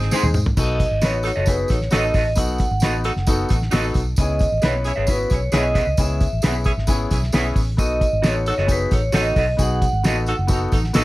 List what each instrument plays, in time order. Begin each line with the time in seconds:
Already playing: saxophone section C4 D#4 G#4, vibraphone C5
0.02 snare
0.11 upright piano G#3 C4 D#4 G#4 C5, clean electric guitar D#4 G#4 C5, snare, tambourine
0.23 fingered electric bass D#2, high tom
0.34 fingered electric bass G#2, mid tom, tambourine
0.46 floor tom
0.57 fingered electric bass B1, upright piano B3 D#4 F#4 A4, vibraphone D#5, kick, crash, tambourine
0.80 kick, closed hi-hat, tambourine
0.91 fingered electric bass G#1
1.01 fingered electric bass A1, upright piano B3 D#4 F#4 B4, clean electric guitar F#4 A4 D#5, vibraphone C#5, snare, closed hi-hat, tambourine
1.23 saxophone section D#4 F#4 A4, closed hi-hat, tambourine
1.36 fingered electric bass F#1, clean electric guitar F#4 A4 D#5
1.46 upright piano B3 D#4 F#4 G#4, saxophone section D#4 F#4 A4, vibraphone B4, kick, closed hi-hat, tambourine
1.68 fingered electric bass A1, saxophone section D#4 F#4 A4, vibraphone C#5, kick, closed hi-hat, tambourine
1.82 snare
1.91 fingered electric bass A1, upright piano B3 D#4 F#4 A4, saxophone section D#4 F#4 A4, clean electric guitar F#4 A4 D#5, vibraphone D#5, snare, closed hi-hat, tambourine
2.14 fingered electric bass A1, clean electric guitar F#4 A4 D#5, kick, open hi-hat, tambourine
2.35 fingered electric bass B1, upright piano B3 D#4 F#4 A4, vibraphone F#5, kick, closed hi-hat, tambourine
2.58 kick, closed hi-hat, tambourine
2.71 fingered electric bass G#1
2.80 fingered electric bass A1, upright piano B3 D#4 F#4, clean electric guitar F#4 A4 D#5, snare, closed hi-hat, tambourine
2.84 upright piano B4
3.04 saxophone section D#4 F#4 A4, closed hi-hat, tambourine
3.16 fingered electric bass F#1, snare
3.26 upright piano B3 D#4 F#4 A4, saxophone section D#4 F#4 A4, kick, closed hi-hat, tambourine
3.49 fingered electric bass A1, saxophone section D#4 F#4 A4, kick, closed hi-hat, tambourine
3.62 snare
3.71 fingered electric bass A1, upright piano B3 D#4 F#4 A4, saxophone section D#4 F#4 A4, clean electric guitar F#4 A4 D#5, snare, closed hi-hat, tambourine
3.94 fingered electric bass B1, kick, closed hi-hat, tambourine
4.16 fingered electric bass C#2, upright piano B3 C#4 E4, vibraphone D#5, kick, closed hi-hat, tambourine
4.21 upright piano G#4
4.39 kick, closed hi-hat, tambourine
4.52 fingered electric bass A1
4.62 fingered electric bass B1, upright piano B3 C#4 E4 B4, clean electric guitar G#4 B4 E5, vibraphone C#5, snare, closed hi-hat, tambourine
4.84 saxophone section C#4 E4 G#4, closed hi-hat, tambourine
4.96 fingered electric bass G#1, clean electric guitar G#4 B4 E5
5.07 upright piano B3 C#4 E4 F#4, saxophone section C#4 E4 G#4, vibraphone B4, kick, closed hi-hat, tambourine
5.30 fingered electric bass B1, saxophone section C#4 E4 G#4, kick, closed hi-hat, tambourine
5.34 vibraphone C#5
5.52 fingered electric bass B1, upright piano B3 C#4 E4 G#4, saxophone section C#4 E4 G#4, clean electric guitar G#4 B4 E5, vibraphone D#5, snare, closed hi-hat, tambourine
5.74 clean electric guitar G#4 B4 E5, kick, closed hi-hat, tambourine
5.87 fingered electric bass C#2
5.97 fingered electric bass C#2, upright piano B3 C#4 E4 G#4, vibraphone E5, kick, closed hi-hat, tambourine
6.20 kick, closed hi-hat, tambourine
6.33 fingered electric bass A1
6.42 fingered electric bass B1, upright piano B3 C#4 E4 G#4, clean electric guitar G#4 B4 E5, snare, closed hi-hat, tambourine
6.64 saxophone section C#4 E4 G#4, kick, closed hi-hat, tambourine
6.77 fingered electric bass G#1, snare
6.87 upright piano B3 C#4 E4 G#4, saxophone section C#4 E4 G#4, kick, closed hi-hat, tambourine
7.10 fingered electric bass B1, saxophone section C#4 E4 G#4, kick, closed hi-hat, tambourine
7.23 snare
7.32 fingered electric bass B1, upright piano B3 C#4 E4 G#4, saxophone section C#4 E4 G#4, clean electric guitar G#4 B4 E5, snare, closed hi-hat, tambourine
7.56 fingered electric bass A1, kick, open hi-hat, tambourine
7.77 fingered electric bass B1, upright piano B3 D#4 F#4 A4, vibraphone D#5, kick, closed hi-hat, tambourine
8.01 kick, closed hi-hat, tambourine
8.13 fingered electric bass G#1
8.22 fingered electric bass A1, upright piano B3 D#4 F#4 A4, clean electric guitar F#4 A4 D#5, snare, closed hi-hat, tambourine
8.26 vibraphone C#5
8.46 saxophone section D#4 F#4 A4, closed hi-hat, tambourine
8.58 fingered electric bass F#1, clean electric guitar F#4 A4 D#5, snare
8.67 upright piano B3 D#4 F#4 G#4, saxophone section D#4 F#4 A4, kick, closed hi-hat, tambourine
8.72 vibraphone B4
8.91 fingered electric bass A1, saxophone section D#4 F#4 A4, vibraphone C#5, kick, closed hi-hat, tambourine
9.12 fingered electric bass A1, upright piano B3 D#4 F#4 A4, saxophone section D#4 F#4 A4, clean electric guitar F#4 A4 D#5, snare, closed hi-hat, tambourine
9.17 vibraphone D#5
9.36 fingered electric bass B1, clean electric guitar F#4 A4 D#5, kick, open hi-hat, tambourine
9.57 fingered electric bass B1, upright piano B3 D#4 F#4 G#4, kick, closed hi-hat, tambourine
9.62 vibraphone F#5
9.82 kick, closed hi-hat, tambourine
9.93 fingered electric bass G#1
10.03 upright piano B3 D#4 F#4 A4, clean electric guitar F#4 A4 D#5, snare, closed hi-hat, tambourine
10.26 saxophone section D#4 F#4 A4, closed hi-hat, tambourine
10.39 fingered electric bass F#1
10.47 upright piano B3 D#4 F#4 A4, kick, closed hi-hat, tambourine
10.52 saxophone section D#4 F#4 A4
10.72 fingered electric bass A1, saxophone section D#4 F#4 A4, kick, closed hi-hat, tambourine
10.84 snare
10.93 fingered electric bass A1, upright piano B3 D#4 F#4 A4, saxophone section D#4 F#4 A4, clean electric guitar F#4 A4 D#5, snare, closed hi-hat, tambourine